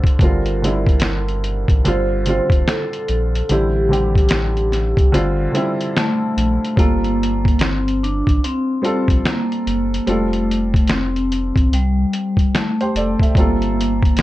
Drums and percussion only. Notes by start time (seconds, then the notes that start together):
0.04 kick, closed hi-hat
0.19 kick, closed hi-hat
0.46 closed hi-hat
0.64 closed hi-hat
0.86 kick, closed hi-hat
1.00 finger snap, snare, closed hi-hat
1.28 closed hi-hat
1.44 closed hi-hat
1.68 kick, closed hi-hat
1.85 closed hi-hat
2.26 closed hi-hat
2.50 kick, closed hi-hat
2.68 finger snap, snare, closed hi-hat
2.93 closed hi-hat
3.08 closed hi-hat
3.35 closed hi-hat
3.49 closed hi-hat
3.93 closed hi-hat
4.15 kick, closed hi-hat
4.29 finger snap, snare, closed hi-hat
4.57 closed hi-hat
4.72 snare, closed hi-hat
4.97 kick, closed hi-hat
5.14 closed hi-hat
5.55 closed hi-hat
5.81 closed hi-hat
5.97 finger snap, snare, closed hi-hat
6.38 closed hi-hat
6.65 closed hi-hat
6.77 kick, closed hi-hat
7.04 closed hi-hat
7.23 closed hi-hat
7.45 kick, closed hi-hat
7.59 finger snap, snare, closed hi-hat
7.88 closed hi-hat
8.04 closed hi-hat
8.27 kick, closed hi-hat
8.44 closed hi-hat
8.84 closed hi-hat
9.08 kick, closed hi-hat
9.26 finger snap, snare, closed hi-hat
9.52 closed hi-hat
9.67 closed hi-hat
9.94 closed hi-hat
10.07 closed hi-hat
10.33 closed hi-hat
10.51 closed hi-hat
10.74 kick, closed hi-hat
10.87 finger snap, snare, closed hi-hat
11.16 closed hi-hat
11.32 closed hi-hat
11.56 kick, closed hi-hat
11.73 closed hi-hat
12.13 closed hi-hat
12.37 kick, closed hi-hat
12.55 finger snap, snare, closed hi-hat
12.81 closed hi-hat
12.96 closed hi-hat
13.19 kick, closed hi-hat
13.35 kick, closed hi-hat
13.62 closed hi-hat
13.81 closed hi-hat
14.03 kick, closed hi-hat
14.17 snare, closed hi-hat